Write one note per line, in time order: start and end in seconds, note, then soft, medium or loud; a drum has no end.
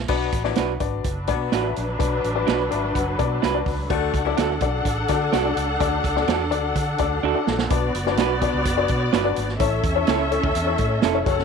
0.08 0.28 B1 loud
0.08 0.43 B3 loud
0.08 0.29 D4 medium
0.08 0.43 D4 loud
0.08 0.29 F#4 medium
0.08 0.43 F#4 loud
0.08 0.29 B4 medium
0.08 0.29 D5 medium
0.08 kick medium
0.08 crash medium
0.32 0.52 A1 medium
0.32 kick medium
0.32 closed hi-hat medium
0.44 0.79 F#3 medium
0.44 0.79 B3 medium
0.44 0.65 D4 medium
0.44 0.79 E4 medium
0.44 0.65 F#4 medium
0.44 0.65 B4 medium
0.44 0.65 D5 medium
0.44 snare soft
0.56 0.77 B1 loud
0.56 0.71 D4 medium
0.56 0.72 F#4 medium
0.56 0.72 B4 medium
0.56 snare loud
0.56 closed hi-hat medium
0.80 1.00 G#1 medium
0.80 1.07 D4 medium
0.80 1.07 F#4 medium
0.80 1.07 B4 medium
0.80 1.07 D5 medium
0.80 kick medium
0.80 closed hi-hat medium
1.04 1.30 F#1 medium
1.04 3.87 F#3 medium
1.04 3.87 D4 medium
1.04 3.87 B4 medium
1.04 kick medium
1.04 closed hi-hat loud
1.27 1.48 B2 medium
1.27 1.74 B3 medium
1.27 1.48 D4 medium
1.27 1.73 D4 medium
1.27 1.48 F#4 medium
1.27 1.74 F#4 medium
1.27 1.48 B4 medium
1.27 1.48 D5 medium
1.27 kick medium
1.27 closed hi-hat medium
1.52 1.72 A1 medium
1.52 1.67 D4 medium
1.52 1.67 F#4 medium
1.52 1.68 B4 medium
1.52 snare loud
1.52 closed hi-hat medium
1.63 1.84 D4 medium
1.63 1.84 F#4 medium
1.63 1.84 B4 medium
1.63 1.84 E5 medium
1.76 1.96 A#1 medium
1.76 closed hi-hat medium
1.99 2.19 B1 loud
1.99 2.20 D4 medium
1.99 2.20 F#4 medium
1.99 2.20 B4 medium
1.99 2.20 D5 medium
1.99 kick loud
1.99 closed hi-hat medium
2.24 2.43 A1 medium
2.24 closed hi-hat medium
2.35 2.56 D4 medium
2.35 2.56 F#4 medium
2.35 2.56 B4 medium
2.35 2.56 D5 medium
2.47 2.67 B1 medium
2.47 2.62 D4 medium
2.47 2.62 F#4 loud
2.47 2.62 B4 loud
2.47 snare loud
2.47 closed hi-hat medium
2.71 2.91 G#1 medium
2.71 2.98 D4 medium
2.71 2.98 F#4 medium
2.71 2.98 B4 medium
2.71 2.98 D5 medium
2.71 2.93 E5 medium
2.71 closed hi-hat medium
2.95 3.14 F#1 medium
2.95 3.17 F#5 medium
2.95 kick medium
2.95 closed hi-hat medium
3.19 3.38 B2 loud
3.19 3.39 D4 medium
3.19 3.39 F#4 medium
3.19 3.39 B4 medium
3.19 3.39 D5 medium
3.19 3.41 A5 medium
3.19 kick medium
3.19 closed hi-hat medium
3.42 3.62 C2 loud
3.42 3.57 D4 medium
3.42 3.57 F#4 medium
3.42 3.58 B4 medium
3.42 3.87 B5 medium
3.42 snare loud
3.42 closed hi-hat medium
3.54 3.75 D4 medium
3.54 3.75 F#4 medium
3.54 3.75 B4 medium
3.54 3.75 D5 medium
3.66 3.85 C#2 medium
3.66 kick medium
3.66 open hi-hat medium
3.90 4.09 D2 loud
3.90 4.24 A3 loud
3.90 7.66 D4 medium
3.90 4.10 D4 medium
3.90 4.24 D4 loud
3.90 4.10 F#4 medium
3.90 4.24 F#4 loud
3.90 4.10 A4 medium
3.90 7.66 A4 medium
3.90 4.11 D5 medium
3.90 7.67 F#5 loud
3.90 kick loud
3.90 closed hi-hat medium
4.14 4.33 C#2 medium
4.14 kick medium
4.14 closed hi-hat medium
4.25 4.59 F#3 medium
4.25 4.59 A3 medium
4.25 4.46 D4 medium
4.25 4.59 E4 medium
4.25 4.46 F#4 medium
4.25 4.46 A4 medium
4.25 4.46 D5 medium
4.37 4.57 D2 medium
4.37 4.52 D4 medium
4.37 4.53 F#4 medium
4.37 4.53 A4 medium
4.37 snare loud
4.37 closed hi-hat medium
4.61 4.80 B1 medium
4.61 4.89 D4 medium
4.61 4.89 F#4 medium
4.61 4.89 A4 medium
4.61 4.89 D5 medium
4.61 kick medium
4.61 closed hi-hat medium
4.85 5.04 A1 loud
4.85 kick medium
4.85 closed hi-hat loud
5.08 5.28 D3 medium
5.08 5.54 A3 medium
5.08 5.29 D4 medium
5.08 5.54 D4 medium
5.08 5.29 F#4 medium
5.08 5.54 F#4 medium
5.08 5.29 A4 medium
5.08 5.29 D5 loud
5.08 kick medium
5.08 closed hi-hat medium
5.33 5.52 C2 medium
5.33 5.47 D4 medium
5.33 5.48 F#4 medium
5.33 5.48 A4 medium
5.33 snare medium
5.33 closed hi-hat medium
5.45 5.65 D4 medium
5.45 5.65 F#4 medium
5.45 5.65 A4 medium
5.45 5.65 D5 medium
5.56 5.75 C#2 medium
5.56 closed hi-hat medium
5.80 5.99 D2 loud
5.80 6.00 D4 medium
5.80 6.01 F#4 medium
5.80 6.01 A4 medium
5.80 6.01 D5 medium
5.80 kick loud
5.80 closed hi-hat medium
6.04 6.23 C#2 loud
6.04 kick medium
6.04 closed hi-hat medium
6.16 6.36 D4 medium
6.16 6.36 F#4 medium
6.16 6.36 A4 medium
6.16 6.36 D5 loud
6.16 snare soft
6.28 6.52 E2 loud
6.28 6.42 D4 medium
6.28 6.43 F#4 medium
6.28 6.43 A4 loud
6.28 snare loud
6.28 closed hi-hat medium
6.51 6.71 D2 medium
6.51 6.78 D4 medium
6.51 6.78 F#4 medium
6.51 6.78 A4 medium
6.51 6.78 D5 loud
6.51 closed hi-hat medium
6.76 6.94 D3 loud
6.76 kick medium
6.76 closed hi-hat medium
6.98 7.19 D2 medium
6.98 7.19 D4 medium
6.98 7.19 F#4 medium
6.98 7.19 A4 medium
6.98 7.19 D5 loud
6.98 kick medium
6.98 closed hi-hat medium
7.23 7.33 D2 loud
7.23 7.37 D4 medium
7.23 7.38 F#4 medium
7.23 7.38 A4 medium
7.35 7.55 D4 medium
7.35 7.55 F#4 medium
7.35 7.55 A4 medium
7.35 7.55 D5 medium
7.47 7.66 A#1 medium
7.47 snare medium
7.59 snare medium
7.70 7.89 B1 loud
7.70 9.56 B3 medium
7.70 7.90 D4 medium
7.70 7.91 F#4 medium
7.70 9.57 F#4 medium
7.70 7.91 B4 medium
7.70 9.57 D5 loud
7.70 7.91 D5 medium
7.70 kick loud
7.70 closed hi-hat loud
7.95 8.19 F#1 medium
7.95 closed hi-hat medium
8.06 8.26 D4 medium
8.06 8.27 F#4 medium
8.06 8.27 B4 medium
8.06 8.27 D5 medium
8.06 snare soft
8.17 8.47 B1 loud
8.17 8.33 D4 medium
8.17 8.33 F#4 medium
8.17 8.33 B4 medium
8.17 snare loud
8.17 closed hi-hat medium
8.41 8.62 D4 medium
8.41 8.62 F#4 medium
8.41 8.62 B4 medium
8.41 8.62 D5 medium
8.41 kick medium
8.41 closed hi-hat medium
8.54 8.63 C#2 medium
8.65 8.84 F#1 medium
8.65 kick medium
8.65 closed hi-hat loud
8.77 9.04 D4 medium
8.77 9.04 F#4 medium
8.77 9.04 B4 medium
8.77 9.04 D5 medium
8.88 9.08 B2 loud
8.88 kick medium
8.88 closed hi-hat medium
9.13 9.32 G1 medium
9.13 9.27 D4 medium
9.13 9.28 F#4 medium
9.13 9.28 B4 medium
9.13 snare loud
9.13 closed hi-hat medium
9.24 9.45 D4 medium
9.24 9.45 F#4 medium
9.24 9.45 B4 medium
9.24 9.45 D5 medium
9.36 9.56 G#1 medium
9.36 closed hi-hat medium
9.48 snare soft
9.59 9.79 A1 loud
9.59 11.23 C#4 medium
9.59 9.80 C#4 medium
9.59 9.80 E4 medium
9.59 11.23 A4 medium
9.59 9.80 A4 medium
9.59 9.80 C#5 medium
9.59 11.23 E5 loud
9.59 kick loud
9.59 closed hi-hat loud
9.84 10.03 E2 medium
9.84 kick loud
9.84 closed hi-hat medium
9.95 10.16 C#4 medium
9.95 10.16 E4 medium
9.95 10.16 A4 medium
9.95 10.16 C#5 medium
10.07 10.36 C#2 loud
10.07 10.22 C#4 medium
10.07 10.22 E4 medium
10.07 10.23 A4 medium
10.07 snare loud
10.07 closed hi-hat medium
10.31 10.51 C#4 medium
10.31 10.51 E4 medium
10.31 10.51 A4 medium
10.31 10.52 C#5 medium
10.31 closed hi-hat medium
10.43 10.53 D2 loud
10.43 kick loud
10.55 10.74 E2 loud
10.55 closed hi-hat medium
10.66 10.93 C#4 medium
10.66 10.94 E4 medium
10.66 10.94 A4 medium
10.66 10.94 C#5 medium
10.78 10.98 A2 medium
10.78 kick medium
10.78 closed hi-hat medium
11.02 11.22 F1 loud
11.02 11.17 C#4 medium
11.02 11.18 E4 medium
11.02 11.18 A4 medium
11.02 snare loud
11.02 closed hi-hat medium
11.14 11.24 C#4 medium
11.14 11.26 E4 medium
11.14 11.26 A4 medium
11.14 11.25 C#5 medium
11.26 11.44 F#1 medium
11.26 11.44 C#4 medium
11.26 11.44 F#4 medium
11.26 11.32 G#4 medium
11.26 11.44 A4 medium
11.26 11.44 C#5 loud
11.26 11.44 F#5 medium
11.26 kick loud
11.26 closed hi-hat medium
11.32 11.44 A4 medium
11.39 snare soft